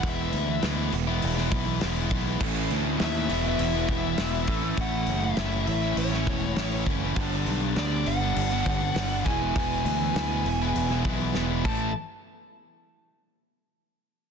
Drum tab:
CC |----------------|x---------------|----------------|----------------|
HH |o-o-o-o-o-o-o-o-|--o-o-o-o-o-o-o-|o-o-o-o-o-o-o-o-|o-o-o-o-o-o-o-o-|
SD |----o----o--o---|----o-------o---|----o----o--o---|----o-------o---|
BD |o---------o---o-|o---------o---o-|o---------o---o-|o---------o---o-|

CC |--------------x-|----------------|
HH |o-o-o-o-o-o-----|----------------|
SD |----o----o--o---|----------------|
BD |o---------o---o-|----------------|